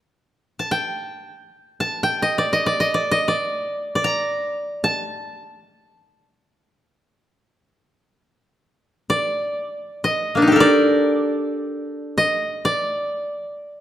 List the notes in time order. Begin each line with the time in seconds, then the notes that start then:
0.59 A5
0.71 G5
1.80 A5
2.03 G5
2.22 D#5
2.38 D5
2.53 D#5
2.66 D5
2.80 D#5
2.94 D5
3.11 D#5
3.28 D5
3.95 D5
4.04 A#5
4.84 A5
9.10 D5
10.04 D#5
10.35 A#3 D4
10.42 D#4
10.47 G4
10.52 A4 A#4
10.60 D5
12.18 D#5
12.65 D5